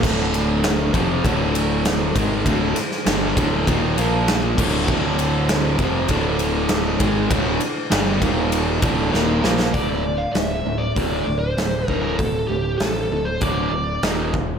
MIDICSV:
0, 0, Header, 1, 8, 480
1, 0, Start_track
1, 0, Key_signature, -1, "minor"
1, 0, Tempo, 606673
1, 26, Time_signature, 4, 2, 24, 8
1, 6746, Tempo, 612245
1, 11499, End_track
2, 0, Start_track
2, 0, Title_t, "Lead electric guitar"
2, 0, Program_c, 0, 29
2, 7696, Note_on_c, 0, 74, 90
2, 8040, Note_on_c, 0, 77, 81
2, 8068, Note_off_c, 0, 74, 0
2, 8157, Note_off_c, 0, 77, 0
2, 8160, Note_on_c, 0, 76, 89
2, 8511, Note_on_c, 0, 74, 95
2, 8541, Note_off_c, 0, 76, 0
2, 8987, Note_off_c, 0, 74, 0
2, 8990, Note_on_c, 0, 72, 81
2, 9382, Note_off_c, 0, 72, 0
2, 9382, Note_on_c, 0, 70, 81
2, 9479, Note_off_c, 0, 70, 0
2, 9479, Note_on_c, 0, 70, 86
2, 9600, Note_off_c, 0, 70, 0
2, 9600, Note_on_c, 0, 69, 82
2, 9839, Note_off_c, 0, 69, 0
2, 9842, Note_on_c, 0, 67, 70
2, 10076, Note_off_c, 0, 67, 0
2, 10079, Note_on_c, 0, 69, 76
2, 10450, Note_on_c, 0, 72, 84
2, 10462, Note_off_c, 0, 69, 0
2, 10574, Note_off_c, 0, 72, 0
2, 10574, Note_on_c, 0, 74, 85
2, 11059, Note_off_c, 0, 74, 0
2, 11499, End_track
3, 0, Start_track
3, 0, Title_t, "Overdriven electric guitar"
3, 0, Program_c, 1, 29
3, 27, Note_on_c, 1, 38, 98
3, 33, Note_on_c, 1, 45, 101
3, 42, Note_on_c, 1, 50, 96
3, 739, Note_off_c, 1, 38, 0
3, 742, Note_off_c, 1, 45, 0
3, 742, Note_on_c, 1, 41, 98
3, 746, Note_off_c, 1, 50, 0
3, 746, Note_on_c, 1, 48, 92
3, 750, Note_on_c, 1, 53, 99
3, 976, Note_off_c, 1, 41, 0
3, 978, Note_off_c, 1, 48, 0
3, 981, Note_off_c, 1, 53, 0
3, 982, Note_on_c, 1, 38, 111
3, 988, Note_on_c, 1, 45, 105
3, 995, Note_on_c, 1, 50, 110
3, 1696, Note_off_c, 1, 38, 0
3, 1699, Note_off_c, 1, 45, 0
3, 1702, Note_off_c, 1, 50, 0
3, 1706, Note_on_c, 1, 44, 86
3, 1712, Note_on_c, 1, 51, 97
3, 1715, Note_on_c, 1, 56, 101
3, 1938, Note_off_c, 1, 44, 0
3, 1941, Note_off_c, 1, 51, 0
3, 1943, Note_off_c, 1, 56, 0
3, 1946, Note_on_c, 1, 38, 87
3, 1953, Note_on_c, 1, 45, 101
3, 1957, Note_on_c, 1, 50, 100
3, 2176, Note_off_c, 1, 38, 0
3, 2181, Note_off_c, 1, 45, 0
3, 2183, Note_off_c, 1, 50, 0
3, 2418, Note_on_c, 1, 43, 80
3, 2428, Note_on_c, 1, 50, 94
3, 2432, Note_on_c, 1, 55, 92
3, 2654, Note_off_c, 1, 43, 0
3, 2659, Note_off_c, 1, 50, 0
3, 2660, Note_off_c, 1, 55, 0
3, 2667, Note_on_c, 1, 38, 90
3, 2672, Note_on_c, 1, 45, 105
3, 2676, Note_on_c, 1, 50, 111
3, 2898, Note_off_c, 1, 38, 0
3, 2900, Note_off_c, 1, 45, 0
3, 2903, Note_off_c, 1, 50, 0
3, 2910, Note_on_c, 1, 39, 91
3, 2911, Note_on_c, 1, 46, 104
3, 2917, Note_on_c, 1, 51, 105
3, 3138, Note_off_c, 1, 46, 0
3, 3139, Note_off_c, 1, 39, 0
3, 3143, Note_off_c, 1, 51, 0
3, 3148, Note_on_c, 1, 46, 92
3, 3150, Note_on_c, 1, 53, 97
3, 3156, Note_on_c, 1, 58, 96
3, 3618, Note_off_c, 1, 46, 0
3, 3619, Note_off_c, 1, 53, 0
3, 3622, Note_off_c, 1, 58, 0
3, 3630, Note_on_c, 1, 38, 83
3, 3632, Note_on_c, 1, 45, 97
3, 3637, Note_on_c, 1, 50, 89
3, 3859, Note_off_c, 1, 38, 0
3, 3860, Note_off_c, 1, 45, 0
3, 3862, Note_off_c, 1, 50, 0
3, 3870, Note_on_c, 1, 38, 87
3, 3875, Note_on_c, 1, 45, 89
3, 3880, Note_on_c, 1, 50, 99
3, 4576, Note_off_c, 1, 38, 0
3, 4580, Note_on_c, 1, 41, 89
3, 4581, Note_off_c, 1, 45, 0
3, 4584, Note_off_c, 1, 50, 0
3, 4586, Note_on_c, 1, 48, 103
3, 4589, Note_on_c, 1, 53, 99
3, 4814, Note_off_c, 1, 41, 0
3, 4817, Note_off_c, 1, 48, 0
3, 4819, Note_off_c, 1, 53, 0
3, 4819, Note_on_c, 1, 38, 102
3, 4822, Note_on_c, 1, 45, 110
3, 4829, Note_on_c, 1, 50, 116
3, 5531, Note_off_c, 1, 38, 0
3, 5534, Note_on_c, 1, 44, 91
3, 5535, Note_off_c, 1, 45, 0
3, 5539, Note_off_c, 1, 50, 0
3, 5542, Note_on_c, 1, 51, 87
3, 5547, Note_on_c, 1, 56, 108
3, 5771, Note_off_c, 1, 44, 0
3, 5775, Note_off_c, 1, 51, 0
3, 5776, Note_on_c, 1, 38, 98
3, 5778, Note_off_c, 1, 56, 0
3, 5782, Note_on_c, 1, 45, 95
3, 5786, Note_on_c, 1, 50, 99
3, 6008, Note_off_c, 1, 38, 0
3, 6016, Note_off_c, 1, 45, 0
3, 6018, Note_off_c, 1, 50, 0
3, 6254, Note_on_c, 1, 43, 93
3, 6260, Note_on_c, 1, 50, 83
3, 6265, Note_on_c, 1, 55, 90
3, 6488, Note_off_c, 1, 43, 0
3, 6492, Note_on_c, 1, 39, 95
3, 6495, Note_off_c, 1, 50, 0
3, 6498, Note_off_c, 1, 55, 0
3, 6499, Note_on_c, 1, 46, 93
3, 6502, Note_on_c, 1, 51, 95
3, 6969, Note_off_c, 1, 39, 0
3, 6972, Note_on_c, 1, 38, 95
3, 6974, Note_off_c, 1, 46, 0
3, 6975, Note_off_c, 1, 51, 0
3, 6978, Note_on_c, 1, 45, 98
3, 6984, Note_on_c, 1, 50, 92
3, 7199, Note_off_c, 1, 38, 0
3, 7202, Note_on_c, 1, 39, 94
3, 7204, Note_off_c, 1, 45, 0
3, 7208, Note_on_c, 1, 46, 85
3, 7212, Note_off_c, 1, 50, 0
3, 7215, Note_on_c, 1, 51, 96
3, 7442, Note_off_c, 1, 46, 0
3, 7444, Note_off_c, 1, 39, 0
3, 7451, Note_off_c, 1, 51, 0
3, 7452, Note_on_c, 1, 46, 77
3, 7457, Note_on_c, 1, 53, 98
3, 7460, Note_on_c, 1, 58, 91
3, 7689, Note_off_c, 1, 46, 0
3, 7691, Note_off_c, 1, 53, 0
3, 7693, Note_off_c, 1, 58, 0
3, 7693, Note_on_c, 1, 38, 73
3, 7700, Note_on_c, 1, 45, 80
3, 7701, Note_on_c, 1, 50, 87
3, 7922, Note_off_c, 1, 38, 0
3, 7925, Note_off_c, 1, 45, 0
3, 7926, Note_off_c, 1, 50, 0
3, 7934, Note_on_c, 1, 38, 66
3, 7939, Note_on_c, 1, 45, 70
3, 8153, Note_off_c, 1, 38, 0
3, 8155, Note_off_c, 1, 45, 0
3, 8173, Note_on_c, 1, 38, 62
3, 8177, Note_on_c, 1, 45, 73
3, 8392, Note_off_c, 1, 38, 0
3, 8394, Note_off_c, 1, 45, 0
3, 8418, Note_on_c, 1, 38, 66
3, 8418, Note_on_c, 1, 45, 71
3, 8634, Note_off_c, 1, 38, 0
3, 8634, Note_off_c, 1, 45, 0
3, 8648, Note_on_c, 1, 38, 84
3, 8657, Note_on_c, 1, 45, 88
3, 8659, Note_on_c, 1, 50, 96
3, 8879, Note_off_c, 1, 38, 0
3, 8884, Note_off_c, 1, 45, 0
3, 8885, Note_off_c, 1, 50, 0
3, 8894, Note_on_c, 1, 38, 60
3, 8898, Note_on_c, 1, 45, 69
3, 9113, Note_off_c, 1, 38, 0
3, 9115, Note_off_c, 1, 45, 0
3, 9134, Note_on_c, 1, 38, 63
3, 9141, Note_on_c, 1, 45, 78
3, 9353, Note_off_c, 1, 38, 0
3, 9356, Note_off_c, 1, 45, 0
3, 9380, Note_on_c, 1, 38, 80
3, 9388, Note_on_c, 1, 45, 88
3, 9390, Note_on_c, 1, 50, 94
3, 9605, Note_off_c, 1, 38, 0
3, 9610, Note_off_c, 1, 45, 0
3, 9611, Note_off_c, 1, 50, 0
3, 9618, Note_on_c, 1, 38, 61
3, 9623, Note_on_c, 1, 45, 66
3, 9835, Note_off_c, 1, 38, 0
3, 9838, Note_off_c, 1, 45, 0
3, 9859, Note_on_c, 1, 38, 68
3, 9863, Note_on_c, 1, 45, 68
3, 10076, Note_off_c, 1, 38, 0
3, 10078, Note_off_c, 1, 45, 0
3, 10105, Note_on_c, 1, 38, 60
3, 10110, Note_on_c, 1, 45, 80
3, 10319, Note_off_c, 1, 38, 0
3, 10322, Note_off_c, 1, 45, 0
3, 10350, Note_on_c, 1, 38, 64
3, 10351, Note_on_c, 1, 45, 72
3, 10562, Note_off_c, 1, 38, 0
3, 10563, Note_off_c, 1, 45, 0
3, 10583, Note_on_c, 1, 38, 85
3, 10589, Note_on_c, 1, 45, 91
3, 10595, Note_on_c, 1, 50, 98
3, 10808, Note_off_c, 1, 38, 0
3, 10812, Note_off_c, 1, 45, 0
3, 10815, Note_off_c, 1, 50, 0
3, 10829, Note_on_c, 1, 38, 64
3, 10830, Note_on_c, 1, 45, 66
3, 11042, Note_off_c, 1, 38, 0
3, 11043, Note_off_c, 1, 45, 0
3, 11063, Note_on_c, 1, 39, 84
3, 11071, Note_on_c, 1, 46, 94
3, 11076, Note_on_c, 1, 51, 97
3, 11290, Note_off_c, 1, 39, 0
3, 11294, Note_off_c, 1, 46, 0
3, 11296, Note_off_c, 1, 51, 0
3, 11311, Note_on_c, 1, 39, 71
3, 11315, Note_on_c, 1, 46, 66
3, 11499, Note_off_c, 1, 39, 0
3, 11499, Note_off_c, 1, 46, 0
3, 11499, End_track
4, 0, Start_track
4, 0, Title_t, "Picked electric bass"
4, 0, Program_c, 2, 34
4, 25, Note_on_c, 2, 26, 93
4, 713, Note_off_c, 2, 26, 0
4, 742, Note_on_c, 2, 29, 92
4, 967, Note_off_c, 2, 29, 0
4, 983, Note_on_c, 2, 26, 85
4, 1672, Note_off_c, 2, 26, 0
4, 1711, Note_on_c, 2, 32, 91
4, 1931, Note_off_c, 2, 32, 0
4, 1948, Note_on_c, 2, 26, 95
4, 2170, Note_off_c, 2, 26, 0
4, 2427, Note_on_c, 2, 31, 91
4, 2649, Note_off_c, 2, 31, 0
4, 2670, Note_on_c, 2, 26, 96
4, 2890, Note_off_c, 2, 26, 0
4, 2911, Note_on_c, 2, 27, 94
4, 3131, Note_off_c, 2, 27, 0
4, 3148, Note_on_c, 2, 34, 88
4, 3594, Note_off_c, 2, 34, 0
4, 3622, Note_on_c, 2, 26, 99
4, 3846, Note_off_c, 2, 26, 0
4, 3867, Note_on_c, 2, 26, 89
4, 4553, Note_off_c, 2, 26, 0
4, 4582, Note_on_c, 2, 29, 86
4, 4806, Note_off_c, 2, 29, 0
4, 4820, Note_on_c, 2, 26, 87
4, 5510, Note_off_c, 2, 26, 0
4, 5541, Note_on_c, 2, 32, 87
4, 5765, Note_off_c, 2, 32, 0
4, 5780, Note_on_c, 2, 26, 88
4, 6005, Note_off_c, 2, 26, 0
4, 6270, Note_on_c, 2, 31, 93
4, 6491, Note_off_c, 2, 31, 0
4, 6503, Note_on_c, 2, 27, 93
4, 6952, Note_off_c, 2, 27, 0
4, 6985, Note_on_c, 2, 26, 91
4, 7207, Note_off_c, 2, 26, 0
4, 7226, Note_on_c, 2, 27, 97
4, 7447, Note_off_c, 2, 27, 0
4, 7463, Note_on_c, 2, 34, 91
4, 7685, Note_off_c, 2, 34, 0
4, 7696, Note_on_c, 2, 26, 84
4, 8096, Note_off_c, 2, 26, 0
4, 8175, Note_on_c, 2, 26, 72
4, 8376, Note_off_c, 2, 26, 0
4, 8411, Note_on_c, 2, 26, 75
4, 8614, Note_off_c, 2, 26, 0
4, 8658, Note_on_c, 2, 26, 84
4, 8858, Note_off_c, 2, 26, 0
4, 8901, Note_on_c, 2, 26, 77
4, 9100, Note_off_c, 2, 26, 0
4, 9135, Note_on_c, 2, 26, 81
4, 9336, Note_off_c, 2, 26, 0
4, 9381, Note_on_c, 2, 26, 78
4, 9580, Note_off_c, 2, 26, 0
4, 9619, Note_on_c, 2, 26, 88
4, 9819, Note_off_c, 2, 26, 0
4, 9854, Note_on_c, 2, 26, 79
4, 10057, Note_off_c, 2, 26, 0
4, 10100, Note_on_c, 2, 33, 79
4, 10300, Note_off_c, 2, 33, 0
4, 10342, Note_on_c, 2, 26, 77
4, 10542, Note_off_c, 2, 26, 0
4, 10581, Note_on_c, 2, 26, 82
4, 10781, Note_off_c, 2, 26, 0
4, 10813, Note_on_c, 2, 26, 78
4, 11017, Note_off_c, 2, 26, 0
4, 11059, Note_on_c, 2, 27, 83
4, 11461, Note_off_c, 2, 27, 0
4, 11499, End_track
5, 0, Start_track
5, 0, Title_t, "Muted distorted electric guitar strokes"
5, 2188, Note_on_c, 9, 29, 53
5, 2267, Note_off_c, 9, 29, 0
5, 6025, Note_on_c, 9, 29, 57
5, 6104, Note_off_c, 9, 29, 0
5, 11499, End_track
6, 0, Start_track
6, 0, Title_t, "Muted overdriven electric guitar strokes"
6, 2185, Note_on_c, 9, 29, 59
6, 2264, Note_off_c, 9, 29, 0
6, 6018, Note_on_c, 9, 29, 57
6, 6097, Note_off_c, 9, 29, 0
6, 11499, End_track
7, 0, Start_track
7, 0, Title_t, "Muted picked electric bass strokes"
7, 2191, Note_on_c, 9, 29, 39
7, 2270, Note_off_c, 9, 29, 0
7, 6028, Note_on_c, 9, 29, 43
7, 6107, Note_off_c, 9, 29, 0
7, 11499, End_track
8, 0, Start_track
8, 0, Title_t, "Drums"
8, 26, Note_on_c, 9, 36, 104
8, 32, Note_on_c, 9, 49, 99
8, 105, Note_off_c, 9, 36, 0
8, 111, Note_off_c, 9, 49, 0
8, 270, Note_on_c, 9, 51, 64
8, 349, Note_off_c, 9, 51, 0
8, 504, Note_on_c, 9, 51, 96
8, 508, Note_on_c, 9, 38, 118
8, 584, Note_off_c, 9, 51, 0
8, 587, Note_off_c, 9, 38, 0
8, 744, Note_on_c, 9, 36, 102
8, 746, Note_on_c, 9, 51, 66
8, 823, Note_off_c, 9, 36, 0
8, 825, Note_off_c, 9, 51, 0
8, 985, Note_on_c, 9, 36, 103
8, 990, Note_on_c, 9, 51, 94
8, 1064, Note_off_c, 9, 36, 0
8, 1069, Note_off_c, 9, 51, 0
8, 1227, Note_on_c, 9, 51, 73
8, 1306, Note_off_c, 9, 51, 0
8, 1466, Note_on_c, 9, 51, 101
8, 1469, Note_on_c, 9, 38, 114
8, 1545, Note_off_c, 9, 51, 0
8, 1548, Note_off_c, 9, 38, 0
8, 1706, Note_on_c, 9, 36, 105
8, 1708, Note_on_c, 9, 51, 85
8, 1785, Note_off_c, 9, 36, 0
8, 1787, Note_off_c, 9, 51, 0
8, 1945, Note_on_c, 9, 36, 101
8, 1947, Note_on_c, 9, 51, 103
8, 2024, Note_off_c, 9, 36, 0
8, 2026, Note_off_c, 9, 51, 0
8, 2183, Note_on_c, 9, 51, 77
8, 2187, Note_on_c, 9, 38, 33
8, 2263, Note_off_c, 9, 51, 0
8, 2266, Note_off_c, 9, 38, 0
8, 2306, Note_on_c, 9, 38, 35
8, 2385, Note_off_c, 9, 38, 0
8, 2424, Note_on_c, 9, 51, 105
8, 2428, Note_on_c, 9, 38, 113
8, 2504, Note_off_c, 9, 51, 0
8, 2507, Note_off_c, 9, 38, 0
8, 2666, Note_on_c, 9, 36, 108
8, 2670, Note_on_c, 9, 51, 73
8, 2745, Note_off_c, 9, 36, 0
8, 2750, Note_off_c, 9, 51, 0
8, 2907, Note_on_c, 9, 36, 100
8, 2910, Note_on_c, 9, 51, 95
8, 2986, Note_off_c, 9, 36, 0
8, 2989, Note_off_c, 9, 51, 0
8, 3148, Note_on_c, 9, 51, 71
8, 3227, Note_off_c, 9, 51, 0
8, 3386, Note_on_c, 9, 51, 88
8, 3390, Note_on_c, 9, 38, 116
8, 3465, Note_off_c, 9, 51, 0
8, 3469, Note_off_c, 9, 38, 0
8, 3625, Note_on_c, 9, 36, 106
8, 3627, Note_on_c, 9, 57, 102
8, 3704, Note_off_c, 9, 36, 0
8, 3706, Note_off_c, 9, 57, 0
8, 3864, Note_on_c, 9, 36, 106
8, 3943, Note_off_c, 9, 36, 0
8, 4105, Note_on_c, 9, 51, 71
8, 4184, Note_off_c, 9, 51, 0
8, 4343, Note_on_c, 9, 51, 93
8, 4346, Note_on_c, 9, 38, 119
8, 4422, Note_off_c, 9, 51, 0
8, 4425, Note_off_c, 9, 38, 0
8, 4579, Note_on_c, 9, 51, 66
8, 4580, Note_on_c, 9, 36, 102
8, 4658, Note_off_c, 9, 51, 0
8, 4659, Note_off_c, 9, 36, 0
8, 4814, Note_on_c, 9, 51, 97
8, 4819, Note_on_c, 9, 36, 97
8, 4893, Note_off_c, 9, 51, 0
8, 4898, Note_off_c, 9, 36, 0
8, 5057, Note_on_c, 9, 51, 69
8, 5136, Note_off_c, 9, 51, 0
8, 5293, Note_on_c, 9, 51, 106
8, 5296, Note_on_c, 9, 38, 106
8, 5372, Note_off_c, 9, 51, 0
8, 5375, Note_off_c, 9, 38, 0
8, 5538, Note_on_c, 9, 51, 77
8, 5540, Note_on_c, 9, 36, 109
8, 5617, Note_off_c, 9, 51, 0
8, 5619, Note_off_c, 9, 36, 0
8, 5780, Note_on_c, 9, 36, 98
8, 5780, Note_on_c, 9, 51, 104
8, 5859, Note_off_c, 9, 51, 0
8, 5860, Note_off_c, 9, 36, 0
8, 6017, Note_on_c, 9, 51, 76
8, 6096, Note_off_c, 9, 51, 0
8, 6263, Note_on_c, 9, 51, 104
8, 6266, Note_on_c, 9, 38, 112
8, 6342, Note_off_c, 9, 51, 0
8, 6345, Note_off_c, 9, 38, 0
8, 6502, Note_on_c, 9, 36, 94
8, 6502, Note_on_c, 9, 51, 70
8, 6581, Note_off_c, 9, 36, 0
8, 6581, Note_off_c, 9, 51, 0
8, 6742, Note_on_c, 9, 51, 99
8, 6820, Note_off_c, 9, 51, 0
8, 6978, Note_on_c, 9, 51, 78
8, 6980, Note_on_c, 9, 36, 108
8, 7057, Note_off_c, 9, 51, 0
8, 7059, Note_off_c, 9, 36, 0
8, 7227, Note_on_c, 9, 38, 63
8, 7305, Note_off_c, 9, 38, 0
8, 7463, Note_on_c, 9, 38, 87
8, 7541, Note_off_c, 9, 38, 0
8, 7582, Note_on_c, 9, 38, 82
8, 7661, Note_off_c, 9, 38, 0
8, 7698, Note_on_c, 9, 36, 95
8, 7699, Note_on_c, 9, 46, 47
8, 7777, Note_off_c, 9, 36, 0
8, 7778, Note_off_c, 9, 46, 0
8, 8176, Note_on_c, 9, 46, 49
8, 8179, Note_on_c, 9, 38, 100
8, 8254, Note_off_c, 9, 46, 0
8, 8257, Note_off_c, 9, 38, 0
8, 8657, Note_on_c, 9, 36, 104
8, 8659, Note_on_c, 9, 46, 48
8, 8736, Note_off_c, 9, 36, 0
8, 8737, Note_off_c, 9, 46, 0
8, 9141, Note_on_c, 9, 46, 48
8, 9144, Note_on_c, 9, 38, 102
8, 9219, Note_off_c, 9, 46, 0
8, 9222, Note_off_c, 9, 38, 0
8, 9377, Note_on_c, 9, 36, 69
8, 9456, Note_off_c, 9, 36, 0
8, 9618, Note_on_c, 9, 36, 108
8, 9618, Note_on_c, 9, 46, 51
8, 9696, Note_off_c, 9, 36, 0
8, 9696, Note_off_c, 9, 46, 0
8, 10098, Note_on_c, 9, 46, 58
8, 10101, Note_on_c, 9, 38, 102
8, 10177, Note_off_c, 9, 46, 0
8, 10180, Note_off_c, 9, 38, 0
8, 10576, Note_on_c, 9, 46, 52
8, 10580, Note_on_c, 9, 36, 102
8, 10654, Note_off_c, 9, 46, 0
8, 10659, Note_off_c, 9, 36, 0
8, 11061, Note_on_c, 9, 46, 50
8, 11064, Note_on_c, 9, 38, 98
8, 11139, Note_off_c, 9, 46, 0
8, 11142, Note_off_c, 9, 38, 0
8, 11303, Note_on_c, 9, 36, 79
8, 11381, Note_off_c, 9, 36, 0
8, 11499, End_track
0, 0, End_of_file